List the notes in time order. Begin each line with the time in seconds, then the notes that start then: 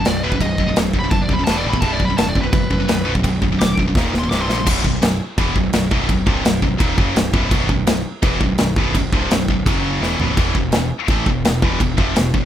0.05 B0 B1 F#2 D5, snare, crash
0.24 B0 B1 F#2 B2 B4
0.32 B1 F#2, kick
0.41 B0 B1 F#2 D#5, kick, crash
0.58 B0 B1 F#2, kick
0.68 B1 F#2
0.76 D#1 B1 F#2, snare, crash
0.93 B0 B1 F#2, kick
0.99 B5
1.03 B1 F#2
1.11 F#1 B1 F#2 A5, kick, crash
1.22 D5
1.29 D#1 B1 F#2, kick
1.33 B5
1.39 B1 F#2
1.44 E1 E2 A5, snare, crash
1.49 B2 E3
1.57 D5
1.65 A1 E2 B2 E3
1.69 B5
1.73 E2 B2, kick
1.81 B0 B1 F#2 B2 A5, kick, crash
1.92 D5
2.00 B0 B1 F#2, kick
2.05 B5
2.10 B1 F#2
2.17 D#1 B1 F#2 A5, snare, crash
2.29 D5
2.35 B0 B1 F#2, kick
2.42 B1 F#2 B4
2.53 F#1 B1 F#2, kick, crash
2.70 F#1 B1 F#2, kick
2.80 B1 F#2
2.88 B0 B1 F#2, snare, crash
3.05 B0 B1 F#2 B2
3.15 B1 F#2, kick
3.23 B0 B1 F#2, kick, crash
3.42 B0 B1 F#2, kick
3.52 B1 F#2
3.59 D#1 B1 F#2 D6, snare, crash
3.78 E1 B1 F#2, kick
3.88 B1 F#2
3.95 D#1 D#2 A#2 D#3, kick, snare
4.13 D#1 D#2 A#2, snare
4.19 C6
4.23 D#2 A#2
4.30 C1 C2 G2 C3 D6, snare
4.41 C6
4.48 A#1 C2 G2 C3, snare
4.58 C2 G2
4.66 B0 B1 F#2 B2, kick, crash
4.84 B0 B1 F#2, kick
5.02 B0 B1 F#2, snare, crash
5.38 E1 E2 B2 E3, kick, crash
5.55 B0 B1 F#2, kick
5.73 B0 B1 F#2, snare, crash
5.91 B0 B1 F#2 B2, kick
6.09 B0 B1 F#2, kick, crash
6.26 C1 C2 G2 C3, kick
6.44 B0 B1 F#2, snare, crash
6.62 B0 B1 F#2, kick
6.78 D#1 D#2 A#2 D#3, kick, crash
6.97 F#1 F#2 C#3 F#3, kick
7.16 B0 B1 F#2, snare, crash
7.33 B0 B1 F#2 B2, kick
7.51 B0 B1 F#2 B2, kick, crash
7.69 B0 B1 F#2, kick
7.87 B0 B1 F#2, snare, crash
8.23 E1 E2 B2 E3, kick, crash
8.41 B0 B1 F#2, kick
8.58 B0 B1 F#2, snare, crash
8.76 B0 B1 F#2 B2, kick
8.95 B0 B1 F#2, kick, crash
9.12 C1 C2 G2 C3, kick
9.31 B0 B1 F#2, snare, crash
9.48 B0 B1 F#2, kick
9.66 F#1 F#2 C#3 F#3, kick, crash
10.01 E1 E2 B2 E3, snare
10.19 B0 B1 F#2 B2, floor tom
10.37 E1 E2 B2 E3, kick, crash
10.55 E1 E2 B2, kick
10.72 E1 E2 B2, snare, crash
11.08 A1 A2 E3 A3, kick, crash
11.26 E1 E2 B2, kick
11.44 E1 E2 B2, snare, crash
11.62 E1 E2 B2 E3, kick
11.80 E1 E2 B2, kick, crash
11.97 F1 F2 C3 F3, kick
12.15 E1 E2 B2, snare, crash
12.34 E1 E2 B2, kick